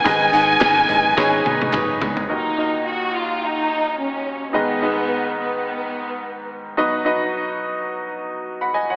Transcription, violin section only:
X:1
M:4/4
L:1/8
Q:"Swing 16ths" 1/4=107
K:Ebm
V:1 name="Violin section"
a6- a z | E2 G F E2 D2 | C3 C4 z | z8 |]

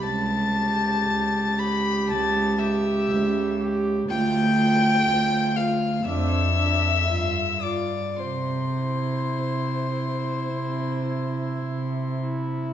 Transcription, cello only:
X:1
M:4/4
L:1/8
Q:1/4=58
K:C
V:1 name="Cello" clef=bass
^C,,2 C,,2 C,,2 C,,2 | D,,2 D,,2 F,,2 G,,2 | C,2 C,2 C,2 C,2 |]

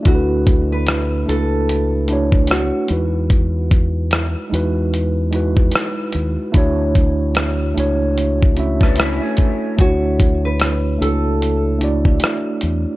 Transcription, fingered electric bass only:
X:1
M:4/4
L:1/16
Q:"Swing 16ths" 1/4=74
K:D
V:1 name="Fingered electric bass" clef=bass
D,,6 C,,6- C,, z E,,2- | E,,6 E,,6 z2 ^D,, z | D,,6 C,,6- C,, z3 | D,,6 C,,6 z2 E,, z |]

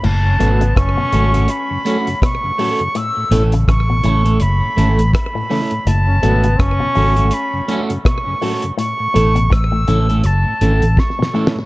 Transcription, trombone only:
X:1
M:4/4
L:1/16
Q:"Swing 16ths" 1/4=82
K:F#m
V:1 name="Trombone"
z C B,2 C6 C z4 z | z16 | z C B,2 C6 C z4 z | z16 |]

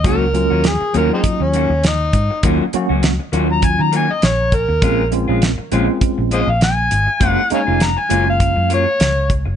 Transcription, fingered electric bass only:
X:1
M:4/4
L:1/16
Q:"Swing 16ths" 1/4=100
K:Ebdor
V:1 name="Fingered electric bass" clef=bass
D,,3 E,,2 z E,, z2 E,,2 E,,3 A,, z | E,, z2 D,,2 z E,,3 E,2 z B,,,3 E,, | B,,,3 B,,,2 z B,,, z2 B,,,2 B,,,3 A,,, z | G,,, z2 F,,,2 z G,,,3 G,,2 z D,,3 G,,, |]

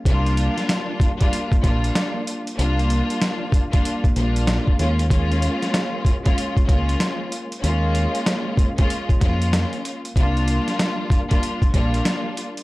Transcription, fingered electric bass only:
X:1
M:4/4
L:1/16
Q:"Swing 16ths" 1/4=95
K:Ebmix
V:1 name="Fingered electric bass" clef=bass
C,,3 z6 z B,,,2 z4 | C,,3 z6 z B,,,3 z E,,2- | E,,3 z6 z D,,2 z4 | E,,3 z6 z F,,3 z3 |
C,,3 z6 z B,,,2 z4 |]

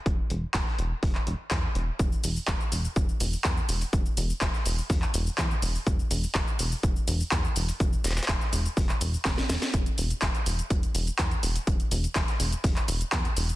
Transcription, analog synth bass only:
X:1
M:4/4
L:1/8
Q:1/4=124
K:Clyd
V:1 name="Analog synth bass" clef=bass
E,,, E,,, E,,, E,,, E,,, E,,, E,, E,,, | E,,, E,,, E,,, E,,, E,,, E,,, E,, E,,, | E,,, E,,, E,,, E,,, E,,, E,,, E,, E,,, | E,,, E,,, E,,, E,,, E,,, E,,, E,, E,,, |
E,,, E,,, E,,, E,,, E,,, E,,, E,,, E,,, | E,,, E,,, E,,, E,,, E,,, E,,, E,, E,,, | E,,, E,,, E,,, E,,, E,,, E,,, E,, E,,, |]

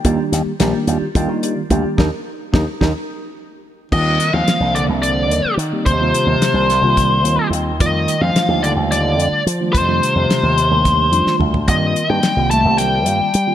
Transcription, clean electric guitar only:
X:1
M:7/8
L:1/8
Q:1/4=108
K:Eblyd
V:1 name="Clean electric guitar"
[B,FGd] z [B,FGd] [FGd] [B,FGd] [FGd] [B,FGd] | [EGB] z [EGB] [EGB] z3 | z6 z | z6 z |
z6 z | z6 z | z6 z |]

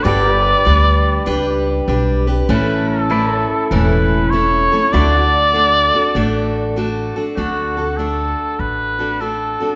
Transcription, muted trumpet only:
X:1
M:4/4
L:1/8
Q:"Swing" 1/4=98
K:D
V:1 name="Muted trumpet"
d6 z2 | B A3 B2 c2 | d6 z2 | F2 A2 B2 A2 |]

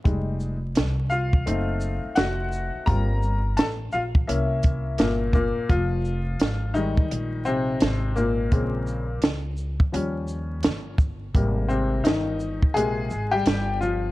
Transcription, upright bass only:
X:1
M:4/4
L:1/16
Q:"Swing 16ths" 1/4=85
K:Fm
V:1 name="Upright bass" clef=bass
F,,,4 C,,4 ^F,,,3 z =F,,,3 z | G,,,4 z2 B,,,2 C,,4 G,,,3 z | F,,,4 A,,,3 z B,,,4 A,,,4 | B,,,4 D,,3 z E,,4 G,,,4 |
A,,,4 G,,,3 z B,,,2 A,,,2 G,,,4 |]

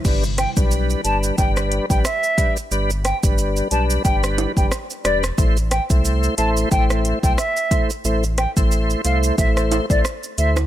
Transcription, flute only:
X:1
M:4/4
L:1/16
Q:"Swing 16ths" 1/4=90
K:Gmix
V:1 name="Flute"
z2 g z3 a z g z2 g e3 z | z2 g z3 a z g z2 g z2 d z | z2 g z3 a z g z2 g e3 z | z2 g z3 f z e z2 d z2 e z |]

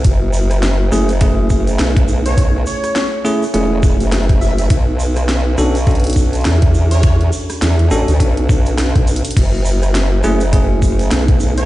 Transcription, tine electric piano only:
X:1
M:4/4
L:1/8
Q:"Swing 16ths" 1/4=103
K:F#m
V:1 name="Tine electric piano"
z3 [A,CEG] [A,CEG]4- | [A,CEG]3 [A,CEG] [A,CEG]4 | z3 [CDFA] [CDFA]4- | [CDFA]3 [CDFA] [CDFA]4 |
z3 [A,CEG] [A,CEG]4 |]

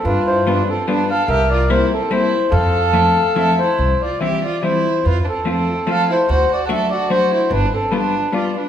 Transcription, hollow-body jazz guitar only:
X:1
M:3/4
L:1/8
Q:"Swing" 1/4=145
K:F
V:1 name="Hollow-body jazz guitar"
z2 [G,=B,DF] z [G,B,DF] z | z2 [G,B,CE] z [G,B,CE] z | z2 [F,A,CE] z [F,A,CE] z | [K:C] z2 [E,G,CE] z [E,G,CE] z |
z2 [F,A,CF] z [F,A,CF] z | z2 [^F,A,D^F] z [F,A,DF] z | z2 [G,B,DF] z [G,B,DF] z |]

